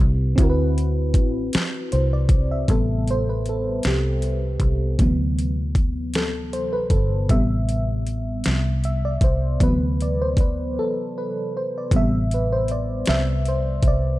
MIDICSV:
0, 0, Header, 1, 5, 480
1, 0, Start_track
1, 0, Tempo, 769231
1, 235, Time_signature, 6, 3, 24, 8
1, 8856, End_track
2, 0, Start_track
2, 0, Title_t, "FM electric piano"
2, 0, Program_c, 0, 5
2, 0, Control_c, 0, 64, 127
2, 0, Note_on_c, 0, 60, 76
2, 0, Note_on_c, 0, 64, 71
2, 0, Note_on_c, 0, 67, 74
2, 0, Note_on_c, 0, 71, 90
2, 204, Note_off_c, 0, 60, 0
2, 210, Note_off_c, 0, 64, 0
2, 219, Note_off_c, 0, 67, 0
2, 222, Note_on_c, 0, 60, 79
2, 225, Note_off_c, 0, 71, 0
2, 239, Note_on_c, 0, 64, 68
2, 244, Control_c, 0, 64, 0
2, 252, Note_on_c, 0, 66, 69
2, 269, Note_on_c, 0, 70, 67
2, 293, Note_off_c, 0, 70, 0
2, 309, Note_on_c, 0, 71, 86
2, 341, Control_c, 0, 64, 127
2, 1201, Note_on_c, 0, 72, 65
2, 1213, Note_off_c, 0, 71, 0
2, 1312, Note_off_c, 0, 72, 0
2, 1330, Note_on_c, 0, 74, 72
2, 1551, Note_off_c, 0, 74, 0
2, 1569, Note_on_c, 0, 76, 60
2, 1644, Note_off_c, 0, 60, 0
2, 1652, Note_off_c, 0, 64, 0
2, 1659, Note_off_c, 0, 66, 0
2, 1678, Note_on_c, 0, 48, 53
2, 1682, Control_c, 0, 64, 0
2, 1682, Note_on_c, 0, 55, 44
2, 1687, Note_on_c, 0, 59, 61
2, 1688, Note_on_c, 0, 69, 85
2, 1787, Control_c, 0, 64, 127
2, 1790, Note_off_c, 0, 76, 0
2, 1929, Note_off_c, 0, 69, 0
2, 1938, Note_on_c, 0, 72, 83
2, 2039, Note_off_c, 0, 72, 0
2, 2055, Note_on_c, 0, 71, 69
2, 2168, Note_off_c, 0, 71, 0
2, 2178, Note_on_c, 0, 69, 74
2, 2414, Note_off_c, 0, 69, 0
2, 2418, Note_on_c, 0, 67, 71
2, 2630, Note_off_c, 0, 67, 0
2, 3092, Note_off_c, 0, 48, 0
2, 3094, Note_off_c, 0, 55, 0
2, 3096, Note_off_c, 0, 59, 0
2, 3122, Note_on_c, 0, 48, 51
2, 3123, Control_c, 0, 64, 0
2, 3126, Note_on_c, 0, 52, 47
2, 3130, Note_on_c, 0, 54, 51
2, 3131, Note_on_c, 0, 59, 63
2, 3227, Control_c, 0, 64, 127
2, 3438, Note_off_c, 0, 48, 0
2, 3440, Note_off_c, 0, 52, 0
2, 3442, Note_off_c, 0, 54, 0
2, 3443, Note_off_c, 0, 59, 0
2, 3840, Note_on_c, 0, 69, 80
2, 4076, Note_on_c, 0, 72, 84
2, 4085, Note_off_c, 0, 69, 0
2, 4198, Note_on_c, 0, 71, 78
2, 4199, Note_off_c, 0, 72, 0
2, 4308, Note_off_c, 0, 71, 0
2, 4313, Note_on_c, 0, 69, 82
2, 4559, Note_on_c, 0, 48, 56
2, 4559, Note_on_c, 0, 76, 92
2, 4562, Note_off_c, 0, 69, 0
2, 4562, Note_on_c, 0, 55, 53
2, 4564, Control_c, 0, 64, 0
2, 4565, Note_on_c, 0, 59, 57
2, 4668, Control_c, 0, 64, 127
2, 4780, Note_off_c, 0, 76, 0
2, 5252, Note_off_c, 0, 48, 0
2, 5254, Note_off_c, 0, 55, 0
2, 5255, Note_off_c, 0, 59, 0
2, 5522, Note_on_c, 0, 76, 88
2, 5642, Note_off_c, 0, 76, 0
2, 5647, Note_on_c, 0, 74, 74
2, 5698, Note_off_c, 0, 74, 0
2, 5765, Note_on_c, 0, 72, 82
2, 5997, Note_on_c, 0, 48, 52
2, 5997, Note_on_c, 0, 52, 51
2, 6002, Control_c, 0, 64, 0
2, 6002, Note_on_c, 0, 54, 50
2, 6003, Note_on_c, 0, 59, 66
2, 6007, Note_off_c, 0, 72, 0
2, 6011, Note_on_c, 0, 71, 87
2, 6111, Control_c, 0, 64, 127
2, 6250, Note_off_c, 0, 71, 0
2, 6253, Note_on_c, 0, 74, 71
2, 6367, Note_off_c, 0, 74, 0
2, 6374, Note_on_c, 0, 72, 73
2, 6477, Note_off_c, 0, 72, 0
2, 6493, Note_on_c, 0, 71, 78
2, 6731, Note_off_c, 0, 71, 0
2, 6733, Note_on_c, 0, 69, 80
2, 6948, Note_off_c, 0, 69, 0
2, 6975, Note_on_c, 0, 71, 81
2, 7212, Note_off_c, 0, 71, 0
2, 7218, Note_on_c, 0, 72, 71
2, 7319, Note_off_c, 0, 72, 0
2, 7349, Note_on_c, 0, 74, 66
2, 7411, Note_off_c, 0, 48, 0
2, 7411, Note_off_c, 0, 52, 0
2, 7414, Note_off_c, 0, 54, 0
2, 7414, Note_off_c, 0, 59, 0
2, 7441, Note_on_c, 0, 48, 55
2, 7443, Control_c, 0, 64, 0
2, 7446, Note_on_c, 0, 55, 54
2, 7449, Note_on_c, 0, 59, 56
2, 7455, Note_off_c, 0, 74, 0
2, 7465, Note_on_c, 0, 76, 100
2, 7541, Control_c, 0, 64, 127
2, 7697, Note_off_c, 0, 76, 0
2, 7701, Note_on_c, 0, 71, 70
2, 7757, Note_off_c, 0, 48, 0
2, 7760, Note_off_c, 0, 55, 0
2, 7762, Note_off_c, 0, 59, 0
2, 7811, Note_off_c, 0, 71, 0
2, 7815, Note_on_c, 0, 72, 77
2, 7917, Note_off_c, 0, 72, 0
2, 7934, Note_on_c, 0, 74, 74
2, 8168, Note_on_c, 0, 76, 94
2, 8171, Note_off_c, 0, 74, 0
2, 8255, Note_off_c, 0, 76, 0
2, 8414, Note_on_c, 0, 72, 89
2, 8652, Note_off_c, 0, 72, 0
2, 8659, Note_on_c, 0, 74, 86
2, 8856, Note_off_c, 0, 74, 0
2, 8856, End_track
3, 0, Start_track
3, 0, Title_t, "Fingered electric bass"
3, 0, Program_c, 1, 33
3, 0, Note_on_c, 1, 36, 84
3, 212, Note_off_c, 1, 36, 0
3, 244, Note_on_c, 1, 38, 125
3, 717, Note_off_c, 1, 38, 0
3, 717, Note_on_c, 1, 33, 95
3, 932, Note_off_c, 1, 33, 0
3, 1205, Note_on_c, 1, 36, 79
3, 1655, Note_off_c, 1, 36, 0
3, 1680, Note_on_c, 1, 33, 102
3, 2373, Note_off_c, 1, 33, 0
3, 2405, Note_on_c, 1, 36, 84
3, 2855, Note_off_c, 1, 36, 0
3, 2876, Note_on_c, 1, 36, 71
3, 3092, Note_off_c, 1, 36, 0
3, 3121, Note_on_c, 1, 38, 105
3, 4313, Note_on_c, 1, 31, 71
3, 4322, Note_off_c, 1, 38, 0
3, 4530, Note_off_c, 1, 31, 0
3, 4557, Note_on_c, 1, 33, 102
3, 5251, Note_off_c, 1, 33, 0
3, 5287, Note_on_c, 1, 36, 80
3, 5736, Note_off_c, 1, 36, 0
3, 5753, Note_on_c, 1, 36, 70
3, 5970, Note_off_c, 1, 36, 0
3, 5999, Note_on_c, 1, 38, 110
3, 6717, Note_off_c, 1, 38, 0
3, 7443, Note_on_c, 1, 33, 107
3, 8134, Note_off_c, 1, 33, 0
3, 8166, Note_on_c, 1, 36, 81
3, 8616, Note_off_c, 1, 36, 0
3, 8634, Note_on_c, 1, 36, 69
3, 8850, Note_off_c, 1, 36, 0
3, 8856, End_track
4, 0, Start_track
4, 0, Title_t, "Muted fingered electric bass strokes"
4, 967, Note_on_c, 9, 29, 44
4, 1029, Note_off_c, 9, 29, 0
4, 8856, End_track
5, 0, Start_track
5, 0, Title_t, "Drums"
5, 236, Note_on_c, 9, 36, 110
5, 239, Note_on_c, 9, 42, 69
5, 299, Note_off_c, 9, 36, 0
5, 301, Note_off_c, 9, 42, 0
5, 485, Note_on_c, 9, 42, 53
5, 548, Note_off_c, 9, 42, 0
5, 712, Note_on_c, 9, 36, 96
5, 717, Note_on_c, 9, 42, 46
5, 774, Note_off_c, 9, 36, 0
5, 780, Note_off_c, 9, 42, 0
5, 955, Note_on_c, 9, 42, 72
5, 966, Note_on_c, 9, 38, 100
5, 1017, Note_off_c, 9, 42, 0
5, 1028, Note_off_c, 9, 38, 0
5, 1198, Note_on_c, 9, 42, 48
5, 1261, Note_off_c, 9, 42, 0
5, 1429, Note_on_c, 9, 36, 90
5, 1429, Note_on_c, 9, 42, 50
5, 1491, Note_off_c, 9, 36, 0
5, 1491, Note_off_c, 9, 42, 0
5, 1674, Note_on_c, 9, 36, 100
5, 1677, Note_on_c, 9, 42, 55
5, 1737, Note_off_c, 9, 36, 0
5, 1739, Note_off_c, 9, 42, 0
5, 1919, Note_on_c, 9, 42, 45
5, 1981, Note_off_c, 9, 42, 0
5, 2157, Note_on_c, 9, 42, 41
5, 2219, Note_off_c, 9, 42, 0
5, 2391, Note_on_c, 9, 42, 66
5, 2402, Note_on_c, 9, 38, 96
5, 2453, Note_off_c, 9, 42, 0
5, 2464, Note_off_c, 9, 38, 0
5, 2635, Note_on_c, 9, 42, 45
5, 2697, Note_off_c, 9, 42, 0
5, 2868, Note_on_c, 9, 36, 79
5, 2869, Note_on_c, 9, 42, 45
5, 2931, Note_off_c, 9, 36, 0
5, 2931, Note_off_c, 9, 42, 0
5, 3113, Note_on_c, 9, 36, 94
5, 3115, Note_on_c, 9, 42, 59
5, 3176, Note_off_c, 9, 36, 0
5, 3178, Note_off_c, 9, 42, 0
5, 3361, Note_on_c, 9, 42, 47
5, 3423, Note_off_c, 9, 42, 0
5, 3588, Note_on_c, 9, 36, 88
5, 3592, Note_on_c, 9, 42, 44
5, 3651, Note_off_c, 9, 36, 0
5, 3654, Note_off_c, 9, 42, 0
5, 3829, Note_on_c, 9, 42, 65
5, 3840, Note_on_c, 9, 38, 91
5, 3891, Note_off_c, 9, 42, 0
5, 3902, Note_off_c, 9, 38, 0
5, 4076, Note_on_c, 9, 42, 45
5, 4138, Note_off_c, 9, 42, 0
5, 4306, Note_on_c, 9, 36, 81
5, 4308, Note_on_c, 9, 42, 43
5, 4368, Note_off_c, 9, 36, 0
5, 4370, Note_off_c, 9, 42, 0
5, 4551, Note_on_c, 9, 36, 95
5, 4552, Note_on_c, 9, 42, 66
5, 4614, Note_off_c, 9, 36, 0
5, 4615, Note_off_c, 9, 42, 0
5, 4797, Note_on_c, 9, 42, 46
5, 4859, Note_off_c, 9, 42, 0
5, 5033, Note_on_c, 9, 42, 43
5, 5096, Note_off_c, 9, 42, 0
5, 5266, Note_on_c, 9, 42, 74
5, 5277, Note_on_c, 9, 38, 100
5, 5328, Note_off_c, 9, 42, 0
5, 5340, Note_off_c, 9, 38, 0
5, 5514, Note_on_c, 9, 42, 46
5, 5577, Note_off_c, 9, 42, 0
5, 5747, Note_on_c, 9, 36, 88
5, 5751, Note_on_c, 9, 42, 45
5, 5809, Note_off_c, 9, 36, 0
5, 5813, Note_off_c, 9, 42, 0
5, 5993, Note_on_c, 9, 36, 103
5, 5995, Note_on_c, 9, 42, 66
5, 6055, Note_off_c, 9, 36, 0
5, 6058, Note_off_c, 9, 42, 0
5, 6243, Note_on_c, 9, 42, 42
5, 6306, Note_off_c, 9, 42, 0
5, 6470, Note_on_c, 9, 36, 87
5, 6477, Note_on_c, 9, 42, 46
5, 6532, Note_off_c, 9, 36, 0
5, 6540, Note_off_c, 9, 42, 0
5, 7434, Note_on_c, 9, 36, 99
5, 7438, Note_on_c, 9, 42, 62
5, 7497, Note_off_c, 9, 36, 0
5, 7500, Note_off_c, 9, 42, 0
5, 7684, Note_on_c, 9, 42, 52
5, 7746, Note_off_c, 9, 42, 0
5, 7914, Note_on_c, 9, 42, 45
5, 7976, Note_off_c, 9, 42, 0
5, 8147, Note_on_c, 9, 42, 67
5, 8158, Note_on_c, 9, 38, 98
5, 8209, Note_off_c, 9, 42, 0
5, 8221, Note_off_c, 9, 38, 0
5, 8396, Note_on_c, 9, 42, 46
5, 8458, Note_off_c, 9, 42, 0
5, 8627, Note_on_c, 9, 36, 86
5, 8628, Note_on_c, 9, 42, 49
5, 8690, Note_off_c, 9, 36, 0
5, 8690, Note_off_c, 9, 42, 0
5, 8856, End_track
0, 0, End_of_file